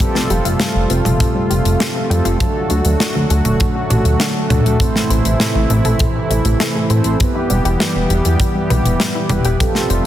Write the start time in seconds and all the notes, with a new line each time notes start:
Already playing: G3
0.00 C3 F3 G3 A3 C4 F4 G4 A4, kick, closed hi-hat
0.15 C4, snare
0.30 F1 G3, closed hi-hat
0.45 F1 F4, closed hi-hat
0.60 G3, snare, closed hi-hat
0.75 F1
0.90 F1 C4, closed hi-hat
1.05 F1 G3, closed hi-hat, mid tom
1.20 F4, kick, closed hi-hat
1.35 G3
1.50 F1 G4, closed hi-hat
1.65 F1, closed hi-hat
1.80 G3, snare, closed hi-hat
1.95 C4
2.10 F2 G3 C4 F4 G4 A4, closed hi-hat
2.25 F1 F4, closed hi-hat
2.40 D3 F#3 A3 D4 F#4 A4, kick, closed hi-hat
2.70 D2 D4, closed hi-hat
2.85 D2 F#3, closed hi-hat
3.00 F#4, snare, closed hi-hat
3.15 D2 F#3
3.30 D2 A4, closed hi-hat
3.45 D1, closed hi-hat, mid tom
3.60 F#3, kick, closed hi-hat
3.75 D4
3.90 A1 D5, closed hi-hat, mid tom
4.05 D2 F#4, closed hi-hat
4.20 D4, snare, closed hi-hat
4.50 D2 A2 F#3 A3 D4 F#4 A4, closed hi-hat, mid tom
4.65 D2 F#3, closed hi-hat
4.80 A2 C3 E3 C4 E4 A4 C5, kick, closed hi-hat
4.95 A3, snare
5.10 A1 C5, closed hi-hat
5.25 A1, closed hi-hat
5.40 A3, snare, closed hi-hat
5.55 A1 E4
5.70 A1 A3, closed hi-hat
5.85 A1 A4, closed hi-hat, mid tom
5.99 A3, kick, closed hi-hat
6.30 A1 E4, closed hi-hat
6.45 A1 A3, closed hi-hat
6.60 A4, snare, closed hi-hat
6.75 A3
6.90 A2 C4 E4 A4 C5, closed hi-hat
7.04 A1, closed hi-hat
7.20 E3 G3 B3 E4 G4 B4, kick, closed hi-hat
7.35 E4
7.50 E1 G3, closed hi-hat
7.65 E1 G4, closed hi-hat
7.80 G3, snare, closed hi-hat
7.95 E1
8.10 E1 E4, closed hi-hat
8.25 E2 G3, closed hi-hat
8.40 G4, kick, closed hi-hat
8.55 G3
8.70 B1 B4, closed hi-hat, mid tom
8.85 E1, closed hi-hat
9.00 G3, snare, closed hi-hat
9.15 E4
9.29 E1 G3 B3 E4 G4 B4, closed hi-hat, mid tom
9.45 E1 G4, closed hi-hat
9.60 C3 F3 G3 A3 C4 F4 G4 A4, kick, closed hi-hat
9.75 snare
9.90 F1 C4, closed hi-hat